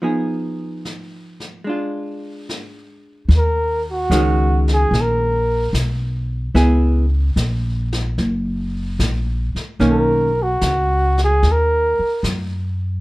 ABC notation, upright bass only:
X:1
M:4/4
L:1/8
Q:"Swing" 1/4=74
K:Ebm
V:1 name="Upright bass" clef=bass
z8 | E,,2 D,,2 B,,,2 C,,2 | D,,2 B,,,2 G,,,2 B,,, z | =B,,,2 ^C,,2 ^D,, z ^F,,2 |]